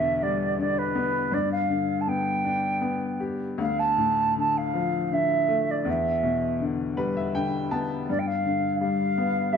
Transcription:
Already playing: upright piano E2 B2 D3, flute E5
0.23 upright piano G3, flute D5
0.59 upright piano D3, flute D5
0.78 flute B4
0.95 upright piano B3
1.32 upright piano G2, flute D5
1.52 flute F5
1.69 upright piano D3
2.01 flute A5
2.07 upright piano B3, flute G5
2.45 upright piano D4
2.81 upright piano B3
3.20 upright piano G4
3.58 upright piano D2, flute F5
3.79 flute A5
3.98 upright piano A2
4.36 upright piano D3, flute A5
4.57 flute F5
4.74 upright piano F3
5.11 upright piano D3, flute E5
5.48 upright piano A3
5.71 flute D5
5.85 upright piano E2
5.90 flute E5
6.23 upright piano B2
6.60 upright piano D3
6.97 upright piano G3 B4
7.17 upright piano E5
7.35 upright piano D3 G5
7.71 upright piano B3 A5
8.09 upright piano G2, flute D5
8.19 flute G5
8.27 flute F5
8.45 upright piano D3
8.79 upright piano G3, flute F5
9.18 upright piano B3
9.53 upright piano G3, flute E5

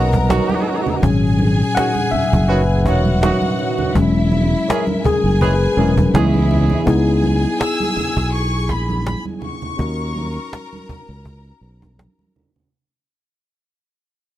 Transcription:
Already playing: fingered electric bass B1, tine electric piano F#3 A#3 C#4 A#4 B4 C#5 D#5 F#5, string section A#4 A#5
0.13 cajon bass, high conga
0.29 horn section D#3 F#3 C#4 F#4, cajon slap, muted conga, high conga
0.49 high conga
0.86 low conga
1.02 fingered electric bass G#1, tine electric piano A#2 F#3 C#4, string section G#4 G#5, cajon bass, muted conga
1.39 cajon slap, muted conga, high conga
1.75 horn section D#3 F#3 C#4 F#4, tine electric piano F#5, cajon slap, muted conga
1.95 high conga
2.11 tine electric piano E5, muted fingered electric bass stroke, muted conga, low conga
2.32 fingered electric bass F#1, cajon bass, high conga
2.48 horn section D#3 F#3 C#4 F#4, tine electric piano B4
2.85 fingered electric bass E1, horn section D#3 F#3 C#4 F#4, string section F#4 F#5, tine electric piano C#5, cajon bass
3.05 high conga
3.22 horn section D#3 F#3 C#4 F#4, cajon slap, high conga
3.42 high conga
3.59 muted conga
3.78 low conga
3.94 fingered electric bass E1, tine electric piano F#3 G#3 C#4, string section E4 E5, cajon bass
4.16 cajon slap
4.32 cajon slap, high conga
4.68 horn section E3 G#3 C#4 G#4, tine electric piano A#4, cajon slap, muted conga
4.87 high conga
5.04 string section G#4 G#5, tine electric piano G#4, muted fingered electric bass stroke, cajon bass, cajon slap, low conga
5.24 fingered electric bass F#1, high conga
5.41 horn section E3 G#3 C#4 G#4, tine electric piano B4, cajon bass
5.77 fingered electric bass E1, horn section E3 G#3 C#4 G#4, tine electric piano F#3 G#3 C#4 A#4, muted conga
5.97 cajon bass, high conga
6.13 fingered electric bass C#2, horn section E3 G#3 C#4 G#4, tine electric piano E3 B3 E4, string section E4 E5, cajon slap, muted conga, high conga
6.34 high conga
6.51 muted conga, low conga
6.70 low conga
6.86 fingered electric bass C#2, tine electric piano B3 D#4 E4 G#4, string section G#4 G#5, cajon bass, muted conga
7.23 muted conga, high conga
7.61 violin section E6, cajon slap
7.80 high conga
7.96 muted fingered electric bass stroke, cajon slap, muted conga, low conga
8.17 fingered electric bass B1, cajon bass
8.33 violin section C#6, cajon slap
8.69 fingered electric bass A#1, violin section B5, cajon bass, muted conga
8.89 high conga
9.06 violin section B5, cajon slap, muted conga, high conga
9.25 high conga
9.42 violin section C#6, muted conga, low conga
9.62 low conga
9.77 fingered electric bass D#2, tine electric piano C#4 D#4 F#4 A#4, string section A#4 A#5, cajon bass, muted conga
10.15 cajon slap, high conga
10.53 cajon slap, muted conga
10.73 high conga
10.89 muted fingered electric bass stroke, cajon bass, cajon slap, muted conga, low conga
11.09 fingered electric bass C#2
11.25 cajon bass
11.61 fingered electric bass B1, cajon slap
11.82 cajon bass, high conga
11.99 cajon slap, muted conga, high conga
12.19 high conga
12.36 muted conga, low conga
12.56 low conga

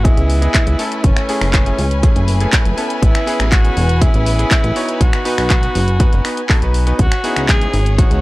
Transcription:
Already playing: analog synth bass G#1, violin section B4 G#5
0.04 electric grand piano B3 E4 G#4 D#5, tenor saxophone E4, kick, closed hi-hat
0.17 analog synth bass C#2, closed hi-hat
0.30 open hi-hat
0.41 electric grand piano B3 E4 G#4 D#5, closed hi-hat
0.54 kick, clap, closed hi-hat
0.67 analog synth bass C#2, closed hi-hat
0.79 electric grand piano A3 C#4 E4 A4, open hi-hat
0.92 closed hi-hat
1.04 analog synth bass F#1, tenor saxophone C#4, kick, closed hi-hat
1.17 finger snap, closed hi-hat
1.29 electric grand piano A3 C#4 E4 G#4, open hi-hat
1.41 analog synth bass F#1, finger snap, open hi-hat
1.53 kick, clap, closed hi-hat
1.66 electric grand piano A3 C#4 E4 G#4, closed hi-hat
1.79 analog synth bass C#2, open hi-hat
1.91 closed hi-hat
2.03 electric grand piano A3 C#4 E4 G#4, kick, closed hi-hat
2.16 analog synth bass F#1, closed hi-hat
2.28 open hi-hat
2.40 electric grand piano A3 C#4 E4 G#4, closed hi-hat
2.53 kick, clap, closed hi-hat
2.65 analog synth bass F#1, closed hi-hat
2.77 electric grand piano B3 C#4 E4 A4, open hi-hat
2.90 closed hi-hat
3.02 analog synth bass A1, tenor saxophone E4, kick, closed hi-hat
3.15 finger snap, closed hi-hat
3.26 electric grand piano B3 C#4 E4 G#4, open hi-hat
3.40 analog synth bass A1, finger snap, closed hi-hat
3.52 tenor saxophone F#4, kick, clap, closed hi-hat
3.64 electric grand piano B3 C#4 E4 G#4, closed hi-hat
3.77 analog synth bass E1, open hi-hat
3.89 closed hi-hat
4.01 electric grand piano B3 C#4 E4 G#4, tenor saxophone E4, kick, closed hi-hat
4.14 analog synth bass A1, closed hi-hat
4.26 open hi-hat
4.38 electric grand piano B3 C#4 E4 G#4, closed hi-hat
4.51 kick, clap, closed hi-hat
4.64 analog synth bass A1, closed hi-hat
4.76 electric grand piano B3 D#4 F#4 C#5, open hi-hat
4.89 closed hi-hat
5.01 analog synth bass B1, tenor saxophone F#4, kick, closed hi-hat
5.13 finger snap, closed hi-hat
5.25 electric grand piano B3 D#4 F#4 B4, open hi-hat
5.38 analog synth bass B1, finger snap, open hi-hat
5.50 kick, clap, closed hi-hat
5.62 electric grand piano B3 D#4 F#4 B4, closed hi-hat
5.75 analog synth bass F#1, open hi-hat
5.88 closed hi-hat
5.99 electric grand piano B3 D#4 F#4 B4, kick, closed hi-hat
6.13 analog synth bass F#1, closed hi-hat
6.24 electric grand piano B3 D#4 F#4 B4, finger snap, open hi-hat
6.37 closed hi-hat
6.49 electric grand piano B3 D#4 F#4 A4, kick, clap, open hi-hat
6.62 analog synth bass B1, electric grand piano B3 D#4 F#4 B4, closed hi-hat
6.74 open hi-hat
6.86 electric grand piano B3 D#4 F#4 B4, closed hi-hat
6.98 analog synth bass C#2, violin section C#4 C#5, tenor saxophone F#4, kick, closed hi-hat
7.12 finger snap, closed hi-hat
7.24 electric grand piano B3 D#4 E4 G#4, open hi-hat
7.36 analog synth bass C#2, finger snap, closed hi-hat
7.49 tenor saxophone G#4, kick, clap, closed hi-hat
7.61 electric grand piano B3 D#4 E4 G#4, closed hi-hat
7.73 analog synth bass G#1, open hi-hat
7.86 closed hi-hat
7.98 electric grand piano B3 D#4 E4 G#4, tenor saxophone F#4, kick, closed hi-hat
8.11 analog synth bass C#2, closed hi-hat

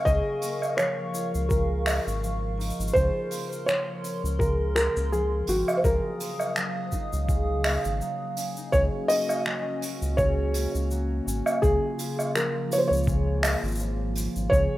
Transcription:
Already playing: harp F#3 A#3 C#4, ambient pad A#4 C#6
0.05 analog synth bass C#2, harp C#3 G#4, felt piano D#5, ambient pad F5, kick, shaker
0.41 harp A#3, open hi-hat, shaker
0.62 low woodblock, shaker
0.77 harp F3, felt piano C#5, finger snap, shaker
1.14 harp F4, shaker
1.35 analog synth bass C#2, shaker
1.49 harp C#3, felt piano A#4, kick, shaker
1.86 harp A#3, finger snap, open hi-hat, low woodblock, shaker
2.07 analog synth bass G#1, shaker
2.23 harp F3, shaker
2.58 harp D#4, open hi-hat, shaker
2.70 shaker
2.79 analog synth bass G#1, harp F4, shaker
2.88 shaker
2.93 analog synth bass C#2, harp C#3 F4, ambient pad A#4 C6, felt piano C5, kick, shaker
3.31 harp A#3, open hi-hat, shaker
3.33 open hi-hat
3.36 open hi-hat
3.38 open hi-hat
3.41 open hi-hat
3.44 open hi-hat
3.46 open hi-hat
3.49 open hi-hat, shaker
3.66 harp F3, felt piano C#5, finger snap, shaker
4.04 open hi-hat, shaker
4.24 analog synth bass C#2, shaker
4.39 harp C#3, felt piano A#4, kick, shaker
4.76 harp A#3, felt piano A#4, finger snap, shaker
4.97 analog synth bass C#2, shaker
5.12 harp F3, felt piano G#4, shaker
5.47 analog synth bass G#1, harp C4, felt piano F#4, open hi-hat, shaker
5.68 low woodblock, shaker
5.77 felt piano C5
5.84 analog synth bass C#2, harp C#3 F4, ambient pad F#3 F5 D#6, felt piano A#4, kick, shaker
6.20 harp A#3, open hi-hat, shaker
6.40 low woodblock, shaker
6.56 harp F#3, finger snap, shaker
6.92 harp D#4, kick, shaker
7.13 analog synth bass C#2, shaker
7.29 harp C#3, kick, shaker
7.64 harp A#3, finger snap, open hi-hat, low woodblock
7.85 analog synth bass G#1, shaker
8.01 harp F#3, shaker
8.36 harp C#4, open hi-hat, shaker
8.57 harp D#4, shaker
8.72 analog synth bass C#2, harp C#3, ambient pad A#3 C#4 F#4, felt piano C#5, kick, shaker
9.08 harp C#4, felt piano D#5, open hi-hat, shaker
9.29 low woodblock, shaker
9.46 harp F#3, finger snap
9.82 open hi-hat, shaker
10.02 analog synth bass C#2, shaker
10.17 harp C#3, felt piano C#5, kick, shaker
10.54 harp A#3, open hi-hat, shaker
10.75 analog synth bass C#2, shaker
10.91 harp F#3, shaker
11.27 analog synth bass G#1, harp C#4, shaker
11.46 low woodblock, shaker
11.62 analog synth bass C#2, harp C#3, ambient pad C#3 F4, felt piano G#4, kick, shaker
11.99 harp F4, open hi-hat, shaker
12.19 low woodblock, shaker
12.35 harp F3, felt piano A#4, finger snap, shaker
12.72 felt piano C#5, open hi-hat, shaker
12.78 felt piano C5
12.88 analog synth bass C#2, felt piano C#5
12.93 shaker
12.96 shaker
13.03 shaker
13.07 harp C#3, kick, shaker
13.43 harp A#3, finger snap, open hi-hat, low woodblock, shaker
13.63 analog synth bass G#1, shaker
13.68 shaker
13.72 shaker
13.75 shaker
13.80 harp F3, shaker
14.15 harp F4, open hi-hat, shaker
14.36 analog synth bass G#1, shaker
14.50 analog synth bass C#2, ambient pad C#3, harp C#3, felt piano C#5, kick, shaker

